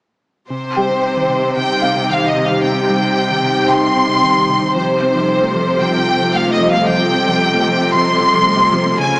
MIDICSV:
0, 0, Header, 1, 6, 480
1, 0, Start_track
1, 0, Tempo, 530973
1, 453, Time_signature, 4, 2, 24, 8
1, 8315, End_track
2, 0, Start_track
2, 0, Title_t, "Felt piano"
2, 0, Program_c, 0, 0
2, 617, Control_c, 0, 64, 127
2, 691, Note_on_c, 0, 67, 24
2, 691, Note_on_c, 0, 79, 27
2, 1646, Note_on_c, 0, 77, 37
2, 2096, Note_off_c, 0, 67, 0
2, 2096, Note_off_c, 0, 79, 0
2, 3053, Note_off_c, 0, 77, 0
2, 3337, Note_on_c, 0, 79, 36
2, 4310, Control_c, 0, 64, 0
2, 4470, Control_c, 0, 64, 127
2, 4739, Note_off_c, 0, 79, 0
2, 5961, Note_on_c, 0, 75, 35
2, 7371, Note_off_c, 0, 75, 0
2, 8149, Control_c, 0, 64, 0
2, 8286, Control_c, 0, 64, 127
2, 8315, End_track
3, 0, Start_track
3, 0, Title_t, "Violin section"
3, 0, Program_c, 1, 48
3, 453, Note_on_c, 1, 72, 50
3, 1377, Note_off_c, 1, 72, 0
3, 1414, Note_on_c, 1, 79, 53
3, 1893, Note_off_c, 1, 79, 0
3, 1900, Note_on_c, 1, 77, 52
3, 2056, Note_off_c, 1, 77, 0
3, 2062, Note_on_c, 1, 75, 47
3, 2218, Note_off_c, 1, 75, 0
3, 2224, Note_on_c, 1, 77, 50
3, 2375, Note_on_c, 1, 79, 56
3, 2379, Note_off_c, 1, 77, 0
3, 3315, Note_off_c, 1, 79, 0
3, 3341, Note_on_c, 1, 84, 68
3, 4297, Note_off_c, 1, 84, 0
3, 4302, Note_on_c, 1, 72, 56
3, 5238, Note_off_c, 1, 72, 0
3, 5259, Note_on_c, 1, 79, 65
3, 5735, Note_on_c, 1, 77, 61
3, 5736, Note_off_c, 1, 79, 0
3, 5890, Note_on_c, 1, 75, 59
3, 5894, Note_off_c, 1, 77, 0
3, 6048, Note_off_c, 1, 75, 0
3, 6055, Note_on_c, 1, 77, 58
3, 6211, Note_off_c, 1, 77, 0
3, 6213, Note_on_c, 1, 79, 67
3, 7154, Note_off_c, 1, 79, 0
3, 7174, Note_on_c, 1, 84, 76
3, 8114, Note_off_c, 1, 84, 0
3, 8131, Note_on_c, 1, 80, 76
3, 8315, Note_off_c, 1, 80, 0
3, 8315, End_track
4, 0, Start_track
4, 0, Title_t, "Ambient pad"
4, 0, Program_c, 2, 92
4, 454, Note_on_c, 2, 55, 51
4, 455, Note_on_c, 2, 72, 51
4, 459, Note_on_c, 2, 63, 52
4, 461, Note_on_c, 2, 67, 52
4, 4257, Note_off_c, 2, 55, 0
4, 4258, Note_off_c, 2, 72, 0
4, 4260, Note_off_c, 2, 63, 0
4, 4261, Note_off_c, 2, 67, 0
4, 4298, Note_on_c, 2, 69, 55
4, 4300, Note_on_c, 2, 55, 50
4, 4303, Note_on_c, 2, 65, 52
4, 4303, Note_on_c, 2, 72, 52
4, 8100, Note_off_c, 2, 55, 0
4, 8102, Note_off_c, 2, 72, 0
4, 8119, Note_off_c, 2, 65, 0
4, 8128, Note_on_c, 2, 73, 52
4, 8130, Note_on_c, 2, 65, 53
4, 8131, Note_on_c, 2, 56, 55
4, 8134, Note_on_c, 2, 68, 58
4, 8136, Note_off_c, 2, 69, 0
4, 8315, Note_off_c, 2, 56, 0
4, 8315, Note_off_c, 2, 65, 0
4, 8315, Note_off_c, 2, 68, 0
4, 8315, Note_off_c, 2, 73, 0
4, 8315, End_track
5, 0, Start_track
5, 0, Title_t, "Synth pluck"
5, 0, Program_c, 3, 84
5, 456, Note_on_c, 3, 48, 68
5, 527, Note_off_c, 3, 48, 0
5, 699, Note_on_c, 3, 55, 45
5, 769, Note_off_c, 3, 55, 0
5, 812, Note_on_c, 3, 48, 62
5, 884, Note_off_c, 3, 48, 0
5, 1057, Note_on_c, 3, 51, 49
5, 1128, Note_off_c, 3, 51, 0
5, 1174, Note_on_c, 3, 48, 70
5, 1245, Note_off_c, 3, 48, 0
5, 1419, Note_on_c, 3, 48, 67
5, 1489, Note_off_c, 3, 48, 0
5, 1658, Note_on_c, 3, 60, 47
5, 1728, Note_off_c, 3, 60, 0
5, 1781, Note_on_c, 3, 48, 62
5, 1851, Note_off_c, 3, 48, 0
5, 1899, Note_on_c, 3, 51, 45
5, 1969, Note_off_c, 3, 51, 0
5, 2025, Note_on_c, 3, 51, 47
5, 2093, Note_off_c, 3, 51, 0
5, 2143, Note_on_c, 3, 48, 61
5, 2212, Note_off_c, 3, 48, 0
5, 2264, Note_on_c, 3, 51, 51
5, 2333, Note_off_c, 3, 51, 0
5, 2379, Note_on_c, 3, 48, 68
5, 2449, Note_off_c, 3, 48, 0
5, 2619, Note_on_c, 3, 55, 45
5, 2689, Note_off_c, 3, 55, 0
5, 2737, Note_on_c, 3, 48, 65
5, 2808, Note_off_c, 3, 48, 0
5, 2980, Note_on_c, 3, 51, 47
5, 3050, Note_off_c, 3, 51, 0
5, 3099, Note_on_c, 3, 48, 68
5, 3169, Note_off_c, 3, 48, 0
5, 3337, Note_on_c, 3, 48, 68
5, 3408, Note_off_c, 3, 48, 0
5, 3581, Note_on_c, 3, 60, 47
5, 3651, Note_off_c, 3, 60, 0
5, 3694, Note_on_c, 3, 48, 64
5, 3766, Note_off_c, 3, 48, 0
5, 3817, Note_on_c, 3, 51, 47
5, 3888, Note_off_c, 3, 51, 0
5, 3935, Note_on_c, 3, 51, 50
5, 4007, Note_off_c, 3, 51, 0
5, 4054, Note_on_c, 3, 48, 64
5, 4126, Note_off_c, 3, 48, 0
5, 4175, Note_on_c, 3, 51, 50
5, 4246, Note_off_c, 3, 51, 0
5, 4298, Note_on_c, 3, 53, 68
5, 4368, Note_off_c, 3, 53, 0
5, 4545, Note_on_c, 3, 60, 46
5, 4614, Note_off_c, 3, 60, 0
5, 4658, Note_on_c, 3, 53, 67
5, 4729, Note_off_c, 3, 53, 0
5, 4901, Note_on_c, 3, 57, 48
5, 4970, Note_off_c, 3, 57, 0
5, 5017, Note_on_c, 3, 53, 68
5, 5088, Note_off_c, 3, 53, 0
5, 5256, Note_on_c, 3, 53, 71
5, 5327, Note_off_c, 3, 53, 0
5, 5494, Note_on_c, 3, 65, 50
5, 5566, Note_off_c, 3, 65, 0
5, 5617, Note_on_c, 3, 53, 66
5, 5688, Note_off_c, 3, 53, 0
5, 5736, Note_on_c, 3, 57, 45
5, 5807, Note_off_c, 3, 57, 0
5, 5858, Note_on_c, 3, 57, 49
5, 5928, Note_off_c, 3, 57, 0
5, 5974, Note_on_c, 3, 53, 67
5, 6046, Note_off_c, 3, 53, 0
5, 6095, Note_on_c, 3, 57, 48
5, 6166, Note_off_c, 3, 57, 0
5, 6217, Note_on_c, 3, 53, 74
5, 6288, Note_off_c, 3, 53, 0
5, 6462, Note_on_c, 3, 60, 48
5, 6531, Note_off_c, 3, 60, 0
5, 6577, Note_on_c, 3, 53, 67
5, 6648, Note_off_c, 3, 53, 0
5, 6818, Note_on_c, 3, 57, 52
5, 6888, Note_off_c, 3, 57, 0
5, 6941, Note_on_c, 3, 53, 70
5, 7010, Note_off_c, 3, 53, 0
5, 7182, Note_on_c, 3, 53, 74
5, 7251, Note_off_c, 3, 53, 0
5, 7418, Note_on_c, 3, 65, 49
5, 7489, Note_off_c, 3, 65, 0
5, 7538, Note_on_c, 3, 53, 65
5, 7608, Note_off_c, 3, 53, 0
5, 7657, Note_on_c, 3, 57, 48
5, 7728, Note_off_c, 3, 57, 0
5, 7774, Note_on_c, 3, 57, 49
5, 7845, Note_off_c, 3, 57, 0
5, 7887, Note_on_c, 3, 53, 68
5, 7961, Note_off_c, 3, 53, 0
5, 8009, Note_on_c, 3, 57, 52
5, 8082, Note_off_c, 3, 57, 0
5, 8129, Note_on_c, 3, 49, 74
5, 8202, Note_off_c, 3, 49, 0
5, 8315, End_track
6, 0, Start_track
6, 0, Title_t, "Cello section"
6, 0, Program_c, 4, 48
6, 452, Note_on_c, 4, 48, 39
6, 4256, Note_off_c, 4, 48, 0
6, 4300, Note_on_c, 4, 48, 45
6, 8100, Note_off_c, 4, 48, 0
6, 8136, Note_on_c, 4, 49, 58
6, 8315, Note_off_c, 4, 49, 0
6, 8315, End_track
0, 0, End_of_file